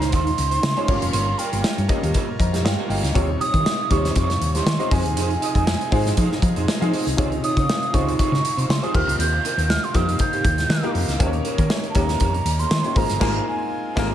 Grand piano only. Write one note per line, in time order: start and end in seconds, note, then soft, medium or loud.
0.00 0.76 G#3 medium
0.00 0.77 C#4 medium
0.00 0.77 D#4 medium
0.00 0.77 F4 medium
0.00 0.90 C5 loud
0.76 0.88 G#3 medium
0.76 0.87 C#4 medium
0.76 0.88 D#4 medium
0.76 0.87 F4 medium
0.76 0.88 C#5 loud
0.88 1.69 A#3 loud
0.88 1.69 C#4 loud
0.88 1.69 F4 medium
0.88 1.70 G4 loud
0.88 1.70 C#5 loud
1.88 2.59 A#3 medium
1.88 2.59 C#4 medium
1.88 2.59 F4 medium
1.88 2.59 G4 medium
1.88 2.37 D#5 medium
2.39 2.64 C5 medium
2.39 2.63 D#5 medium
2.39 2.63 A#5 medium
2.64 2.89 C#5 medium
2.64 2.88 F5 medium
2.64 2.88 G5 medium
2.89 3.38 D#5 medium
2.89 3.13 F5 medium
2.89 3.37 G5 medium
3.14 3.75 C3 loud
3.14 3.75 D#4 medium
3.14 3.75 F4 medium
3.14 3.76 G4 medium
3.14 3.76 C#5 loud
3.90 4.60 C3 medium
3.90 4.61 D#4 medium
3.90 4.61 F4 medium
3.90 4.61 G4 medium
3.90 3.97 C5 medium
3.97 4.64 C#5 medium
4.79 4.89 C4 medium
4.79 4.89 D#4 medium
4.79 4.89 F4 medium
4.79 4.91 G4 medium
4.79 4.90 D#5 medium
4.90 5.72 C4 medium
4.90 5.72 D#4 medium
4.90 5.72 F4 medium
4.90 5.72 G#4 medium
4.90 5.72 D#5 loud
5.91 6.62 C4 medium
5.91 6.62 D#4 medium
5.91 6.62 F4 medium
5.91 6.62 G#4 medium
5.91 6.62 F5 loud
6.80 7.10 C4 medium
6.80 7.10 D#4 medium
6.80 7.10 F4 medium
6.80 7.11 G#4 medium
6.80 7.11 F5 loud
7.17 7.78 C3 loud
7.17 7.78 D#4 medium
7.17 7.78 F4 medium
7.17 7.78 G#4 medium
7.17 7.78 C#5 loud
7.93 8.63 C3 medium
7.93 8.63 D#4 medium
7.93 8.63 F4 medium
7.93 8.63 G#4 medium
7.93 8.64 C#5 medium
8.82 8.94 C4 medium
8.82 8.93 D#4 medium
8.82 8.93 F4 medium
8.82 8.94 G#4 medium
8.82 8.94 C5 medium
8.94 9.75 A#3 medium
8.94 9.75 D#4 medium
8.94 9.75 F4 medium
8.94 9.75 G4 medium
8.94 9.75 C5 medium
9.94 10.64 A#3 medium
9.94 10.64 D#4 medium
9.94 10.65 F4 medium
9.94 10.65 G4 medium
9.94 10.65 C5 medium
10.83 11.13 A#3 medium
10.83 11.13 D#4 medium
10.83 11.13 F4 medium
10.83 11.13 G4 medium
10.83 11.13 A#4 loud
11.19 11.80 A#3 loud
11.19 11.80 C#4 medium
11.19 11.80 D#4 medium
11.19 11.81 G4 medium
11.19 11.27 C5 medium
11.27 11.84 C#5 loud
11.94 12.65 A#3 medium
11.94 12.65 C#4 medium
11.94 12.65 D#4 medium
11.94 12.66 G4 medium
11.94 12.66 C#5 medium
12.84 12.94 A#3 medium
12.84 12.96 C#4 medium
12.84 12.94 D#4 medium
12.84 12.96 G4 medium
12.84 12.97 C#5 medium
12.95 13.18 A#3 medium
12.95 13.19 D#4 medium
12.95 13.19 F4 medium
12.95 13.19 G#4 medium
12.95 13.20 C5 medium
13.20 13.38 A#3 loud
13.20 13.38 D#4 loud
13.20 13.38 F4 loud
13.20 13.39 G#4 loud
13.20 13.39 C5 loud
13.96 14.14 A#3 loud
13.96 14.14 D#4 loud
13.96 14.14 F4 loud
13.96 14.14 G#4 loud
13.96 14.14 C5 loud